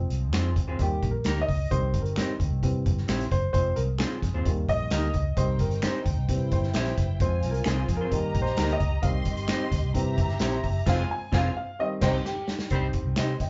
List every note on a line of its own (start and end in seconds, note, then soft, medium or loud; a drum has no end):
0.00 0.75 F3 medium
0.00 0.76 G#3 soft
0.00 0.76 C4 medium
0.10 0.32 C2 medium
0.10 closed hi-hat medium
0.32 0.56 F2 medium
0.32 0.48 C4 medium
0.32 0.48 F4 medium
0.32 0.48 G#4 medium
0.32 0.48 C5 medium
0.32 finger snap medium
0.32 snare loud
0.32 closed hi-hat loud
0.56 0.73 D#2 loud
0.56 kick medium
0.56 closed hi-hat medium
0.68 0.80 C4 soft
0.68 0.80 F4 medium
0.68 0.80 G#4 medium
0.68 0.79 C5 medium
0.79 0.96 D#2 medium
0.79 1.10 D#3 medium
0.79 1.10 G3 medium
0.79 1.11 A#3 medium
0.79 1.09 G4 medium
0.79 kick medium
0.79 closed hi-hat medium
1.02 1.20 A#1 medium
1.02 kick medium
1.02 closed hi-hat medium
1.11 1.42 A#4 medium
1.24 1.42 D2 medium
1.24 1.40 A#3 medium
1.24 1.40 D#4 medium
1.24 1.40 G4 medium
1.24 1.40 A#4 medium
1.24 finger snap medium
1.24 snare loud
1.24 closed hi-hat loud
1.41 1.72 D#5 loud
1.49 1.66 C#2 medium
1.49 kick medium
1.49 open hi-hat medium
1.70 1.95 C2 loud
1.70 2.58 D#3 medium
1.70 2.58 G3 soft
1.70 2.59 C4 medium
1.70 2.00 C5 loud
1.70 kick loud
1.70 closed hi-hat medium
1.94 2.19 G1 medium
1.94 kick medium
1.94 closed hi-hat medium
2.02 2.23 A#4 medium
2.02 closed hi-hat soft
2.16 2.31 C4 medium
2.16 2.32 D#4 medium
2.16 2.32 G4 medium
2.16 2.32 C5 medium
2.16 finger snap loud
2.16 snare loud
2.16 closed hi-hat loud
2.40 2.48 D2 medium
2.40 kick medium
2.40 closed hi-hat medium
2.51 2.59 C2 loud
2.62 2.87 C3 loud
2.62 3.28 E3 medium
2.62 3.28 G3 medium
2.62 3.28 C4 medium
2.62 kick medium
2.62 closed hi-hat medium
2.86 3.03 G1 medium
2.86 kick loud
2.86 closed hi-hat medium
2.97 snare soft
3.08 3.25 A#1 medium
3.08 3.23 C4 medium
3.08 3.23 E4 medium
3.08 3.23 G4 medium
3.08 3.23 C5 medium
3.08 finger snap medium
3.08 snare loud
3.08 closed hi-hat loud
3.20 snare soft
3.20 closed hi-hat medium
3.31 3.49 F#1 medium
3.31 3.51 C5 loud
3.31 kick medium
3.31 closed hi-hat medium
3.53 3.71 F1 loud
3.53 3.84 F3 medium
3.53 3.85 G#3 medium
3.53 3.85 C4 medium
3.53 3.77 C5 loud
3.53 kick loud
3.53 closed hi-hat medium
3.76 4.02 C2 medium
3.76 3.81 A#4 medium
3.76 closed hi-hat medium
3.98 4.14 C4 medium
3.98 4.15 F4 medium
3.98 4.42 G#4 medium
3.98 4.15 G#4 medium
3.98 4.15 C5 medium
3.98 finger snap medium
3.98 snare loud
3.98 closed hi-hat medium
4.22 4.31 F2 medium
4.22 kick medium
4.22 snare soft
4.22 closed hi-hat medium
4.34 4.43 D#2 medium
4.34 4.46 C4 soft
4.34 4.46 F4 medium
4.34 4.46 G#4 medium
4.34 4.46 C5 medium
4.45 4.62 D#2 medium
4.45 5.11 D#3 medium
4.45 5.11 G3 medium
4.45 5.12 A#3 medium
4.45 kick medium
4.45 closed hi-hat medium
4.68 4.86 A#1 medium
4.68 5.40 D#5 loud
4.68 kick medium
4.68 closed hi-hat medium
4.90 5.08 D2 medium
4.90 5.06 A#3 medium
4.90 5.06 D#4 medium
4.90 5.06 G4 medium
4.90 5.07 A#4 loud
4.90 finger snap medium
4.90 snare loud
4.90 closed hi-hat loud
5.02 snare soft
5.14 5.31 C#2 medium
5.14 kick medium
5.14 closed hi-hat medium
5.36 5.61 C2 loud
5.36 6.02 D#3 medium
5.36 6.03 G3 medium
5.36 6.03 C4 medium
5.36 6.26 D#4 medium
5.36 6.26 C5 medium
5.36 5.61 C5 loud
5.36 6.26 G5 medium
5.36 kick loud
5.36 closed hi-hat loud
5.59 5.85 G1 medium
5.59 5.81 A#4 medium
5.59 kick medium
5.59 closed hi-hat medium
5.71 closed hi-hat medium
5.82 5.98 C4 medium
5.82 5.98 D#4 medium
5.82 5.98 G4 medium
5.82 6.04 C5 medium
5.82 5.98 C5 medium
5.82 finger snap medium
5.82 snare loud
5.82 closed hi-hat loud
6.05 6.14 D2 medium
6.05 kick loud
6.05 closed hi-hat medium
6.17 6.26 C2 medium
6.28 6.53 C3 loud
6.28 7.16 E3 medium
6.28 7.17 G3 soft
6.28 7.17 C4 medium
6.28 7.18 E4 medium
6.28 7.18 C5 medium
6.28 7.19 G5 medium
6.28 kick medium
6.28 closed hi-hat medium
6.51 6.69 G1 medium
6.51 6.58 C5 medium
6.51 kick loud
6.51 closed hi-hat medium
6.63 snare soft
6.74 6.91 A#1 medium
6.74 6.89 C4 medium
6.74 6.90 E4 medium
6.74 6.90 G4 loud
6.74 6.90 C5 loud
6.74 7.18 E5 loud
6.74 finger snap medium
6.74 snare loud
6.74 closed hi-hat loud
6.85 snare soft
6.85 closed hi-hat medium
6.98 7.21 F#1 medium
6.98 kick medium
6.98 closed hi-hat medium
7.20 7.44 F2 loud
7.20 7.85 F3 medium
7.20 7.86 G#3 medium
7.20 7.86 C4 medium
7.20 8.10 F4 medium
7.20 8.10 C5 medium
7.20 7.52 C5 medium
7.20 8.10 G#5 medium
7.20 kick loud
7.20 closed hi-hat medium
7.43 7.60 C2 medium
7.43 closed hi-hat medium
7.51 7.67 A#4 medium
7.51 closed hi-hat soft
7.64 7.83 C2 loud
7.64 7.81 C4 medium
7.64 7.81 F4 medium
7.64 7.97 G#4 medium
7.64 7.81 G#4 loud
7.64 7.81 C5 medium
7.64 finger snap medium
7.64 snare loud
7.64 closed hi-hat loud
7.88 8.06 F3 loud
7.88 kick medium
7.88 snare soft
7.88 closed hi-hat medium
7.97 8.44 A#4 loud
8.01 8.13 C4 medium
8.01 8.12 F4 medium
8.01 8.12 G#4 medium
8.01 8.12 C5 medium
8.11 8.42 D#3 medium
8.11 8.29 D#3 loud
8.11 8.42 G3 medium
8.11 8.42 A#3 medium
8.11 9.01 G4 medium
8.11 9.01 D#5 medium
8.11 9.02 A#5 loud
8.11 kick medium
8.11 closed hi-hat medium
8.35 8.52 A#1 medium
8.35 kick loud
8.35 closed hi-hat medium
8.42 8.74 C5 medium
8.46 snare soft
8.57 8.75 D2 loud
8.57 8.73 A#3 medium
8.57 8.73 D#4 medium
8.57 8.73 G4 loud
8.57 8.73 A#4 loud
8.57 finger snap medium
8.57 snare loud
8.57 closed hi-hat loud
8.69 9.04 D#5 loud
8.69 closed hi-hat medium
8.80 8.98 C#2 medium
8.80 kick medium
8.80 closed hi-hat medium
9.02 9.25 C2 loud
9.02 9.68 D#3 medium
9.02 9.68 G3 medium
9.02 9.69 C4 medium
9.02 9.93 G4 medium
9.02 9.93 D#5 medium
9.02 9.08 F5 loud
9.02 9.93 C6 medium
9.02 kick loud
9.02 closed hi-hat medium
9.25 9.52 G1 medium
9.25 kick medium
9.25 closed hi-hat medium
9.37 closed hi-hat medium
9.48 9.64 C4 medium
9.48 9.64 D#4 medium
9.48 9.64 G4 loud
9.48 9.65 C5 medium
9.48 finger snap loud
9.48 snare loud
9.48 closed hi-hat medium
9.71 9.80 D2 loud
9.71 kick medium
9.71 snare soft
9.71 closed hi-hat medium
9.83 9.92 C2 medium
9.94 10.19 C3 loud
9.94 10.25 E3 medium
9.94 10.26 G3 medium
9.94 10.26 C4 medium
9.94 10.85 G4 medium
9.94 10.85 E5 medium
9.94 10.85 A#5 medium
9.94 kick medium
9.94 closed hi-hat medium
10.18 10.35 G1 loud
10.18 kick loud
10.18 closed hi-hat medium
10.28 snare soft
10.39 10.58 A#1 loud
10.39 10.55 C4 medium
10.39 10.56 E4 medium
10.39 10.56 G4 loud
10.39 10.56 C5 loud
10.39 finger snap medium
10.39 snare loud
10.39 closed hi-hat loud
10.52 closed hi-hat medium
10.63 10.81 F#1 medium
10.63 kick medium
10.63 open hi-hat medium
10.86 11.02 F1 loud
10.86 11.18 F3 medium
10.86 11.18 G#3 medium
10.86 11.02 C4 loud
10.86 11.18 C4 medium
10.86 11.02 F4 loud
10.86 11.03 F4 loud
10.86 11.03 G#4 loud
10.86 11.02 C5 loud
10.86 11.03 C5 loud
10.86 11.09 F5 loud
10.86 11.03 G#5 loud
10.86 kick loud
10.86 snare medium
10.86 crash medium
11.11 11.34 G#5 loud
11.32 11.48 F1 loud
11.32 11.48 C4 loud
11.32 11.48 F4 loud
11.32 11.49 F4 loud
11.32 11.48 G#4 loud
11.32 11.49 C5 loud
11.32 11.55 F5 loud
11.32 11.49 G#5 loud
11.32 kick loud
11.32 snare loud
11.57 11.80 F5 loud
11.79 12.10 D#3 medium
11.79 12.10 G3 medium
11.79 12.10 C4 medium
11.79 11.85 D#5 loud
12.01 12.17 C2 loud
12.01 12.17 C4 loud
12.01 12.18 D#4 loud
12.01 12.18 G4 loud
12.01 12.07 C5 medium
12.01 12.18 C5 loud
12.01 12.18 G5 loud
12.01 kick loud
12.01 snare loud
12.01 crash medium
12.25 12.68 G4 medium
12.25 snare medium
12.48 snare loud
12.59 snare loud
12.70 12.88 C2 medium
12.70 12.86 G3 medium
12.70 13.27 C4 medium
12.70 12.86 C4 medium
12.70 12.77 D4 medium
12.70 12.86 D#4 medium
12.70 13.28 G4 medium
12.70 12.86 C5 loud
12.70 13.17 C5 medium
12.70 kick loud
12.70 closed hi-hat medium
12.77 13.30 D#4 medium
12.93 kick medium
12.93 closed hi-hat medium
13.05 13.14 C2 loud
13.16 13.34 C3 loud
13.16 13.32 C4 medium
13.16 13.32 D#4 medium
13.16 13.32 G4 medium
13.16 13.33 C5 medium
13.16 13.40 C5 medium
13.16 13.39 D#5 medium
13.16 finger snap loud
13.16 snare loud
13.16 closed hi-hat medium
13.39 13.50 G1 loud
13.39 13.50 D#5 medium
13.39 13.50 G5 medium
13.39 kick medium
13.39 snare soft
13.39 closed hi-hat medium